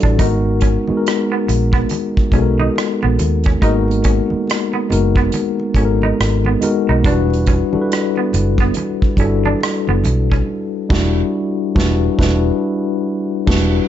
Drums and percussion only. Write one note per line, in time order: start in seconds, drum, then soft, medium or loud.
0.00 kick medium
0.00 closed hi-hat soft
0.18 kick loud
0.18 closed hi-hat medium
0.18 muted conga soft
0.61 kick medium
0.61 closed hi-hat medium
0.87 high conga medium
1.06 cross-stick medium
1.06 closed hi-hat medium
1.48 closed hi-hat medium
1.48 low conga medium
1.73 kick medium
1.89 closed hi-hat medium
1.89 high conga medium
2.17 kick medium
2.17 muted conga soft
2.32 kick medium
2.32 closed hi-hat medium
2.60 high conga medium
2.76 cross-stick loud
2.76 closed hi-hat medium
2.76 muted conga soft
3.02 muted conga soft
3.02 high conga medium
3.19 closed hi-hat medium
3.19 high conga medium
3.19 low conga medium
3.44 kick medium
3.44 closed hi-hat soft
3.62 kick loud
3.62 closed hi-hat medium
3.62 muted conga soft
3.88 closed hi-hat soft
3.88 muted conga soft
4.04 kick medium
4.04 closed hi-hat medium
4.30 high conga medium
4.47 cross-stick loud
4.47 closed hi-hat medium
4.47 muted conga soft
4.73 muted conga soft
4.90 closed hi-hat medium
4.90 low conga medium
5.16 kick medium
5.32 closed hi-hat medium
5.32 high conga medium
5.60 muted conga soft
5.74 kick medium
5.74 closed hi-hat medium
6.02 high conga medium
6.20 cross-stick loud
6.20 closed hi-hat medium
6.45 muted conga soft
6.45 high conga medium
6.62 closed hi-hat medium
6.62 high conga medium
6.62 low conga medium
7.05 kick loud
7.05 closed hi-hat medium
7.30 closed hi-hat soft
7.30 muted conga soft
7.46 kick medium
7.46 closed hi-hat medium
7.73 high conga medium
7.92 cross-stick medium
7.92 closed hi-hat medium
8.16 muted conga soft
8.33 closed hi-hat medium
8.33 low conga medium
8.58 kick medium
8.74 closed hi-hat medium
8.74 muted conga soft
8.74 high conga medium
9.02 kick medium
9.02 muted conga soft
9.17 kick medium
9.17 closed hi-hat medium
9.45 high conga medium
9.61 cross-stick loud
9.61 closed hi-hat medium
9.61 muted conga soft
9.87 muted conga soft
9.87 high conga medium
10.04 closed hi-hat medium
10.04 high conga medium
10.04 low conga medium
10.32 kick medium
10.90 kick loud
10.90 snare loud
10.90 crash medium
11.76 kick loud
11.76 snare loud
12.19 kick medium
12.19 snare loud
13.47 kick loud
13.47 snare loud
13.47 crash medium